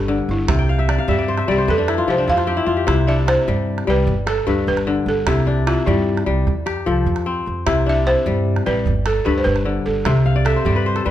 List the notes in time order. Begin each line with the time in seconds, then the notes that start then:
Already playing: G1 G2 G4 A4 B4
0.08 D3
0.29 G1 E4
0.48 C2 C3, calabash thump, calabash click
0.59 G5
0.69 F5
0.78 E5, calabash click
0.89 D5, calabash click
0.98 F5
1.08 G2 G3 G4 E5, calabash thump
1.19 D5
1.28 C5
1.38 E5, calabash click
1.48 C2 G3 G4 D5, calabash click
1.58 C5
1.68 F2 A4 B4, calabash thump
1.78 D4
1.88 E4, calabash click
1.98 F4
2.07 C2 F3 G4 C5
2.18 D4
2.27 F2 E4 F5, calabash thump
2.37 F4, calabash click
2.47 C4 G4
2.57 E4
2.66 F2 F4
2.77 G4
2.87 C2 C3 E4, calabash thump, calabash click
3.07 D4 E5
3.18 calabash click
3.27 E4 C5, calabash click
3.48 G2 G3, calabash thump
3.78 calabash click
3.87 C2 G3 B4, calabash click
4.07 G1, calabash thump
4.27 A4, calabash click
4.47 D2 G2 G4 B4
4.67 G1 B4, calabash thump
4.77 calabash click
4.87 D3
5.06 G1 A4
5.27 C2 C3 E4 G4, calabash thump, calabash click
5.47 D4
5.57 calabash click
5.67 E4 F4, calabash click
5.86 G2 G3 E4, calabash thump, calabash click
6.17 calabash click
6.26 C2 G3
6.47 F2, calabash thump, calabash click
6.66 G4, calabash click
6.76 calabash click
6.86 C2 F3 A4
6.97 calabash click
7.06 F2, calabash thump
7.16 calabash click
7.26 C4
7.46 F2, calabash click
7.66 C2 C3 E4, calabash thump, calabash click
7.86 D4 E5
7.97 calabash click
8.06 E4 C5
8.26 G2 G3, calabash thump
8.56 calabash click
8.66 A1 G3 B4, calabash click
8.86 G1, calabash thump
9.06 A4, calabash click
9.25 D2 G2 G4 B4
9.38 C5
9.44 G1 B4, calabash thump
9.56 calabash click
9.65 D3
9.86 G1 A4
10.05 C2 C3 G4, calabash thump, calabash click
10.26 F5
10.36 D5, calabash click
10.45 A4 E5, calabash click
10.56 C5
10.65 G2 G3 G4 D5, calabash thump
10.76 B4
10.86 C5
10.96 A4, calabash click
11.05 E2 G3 B4, calabash click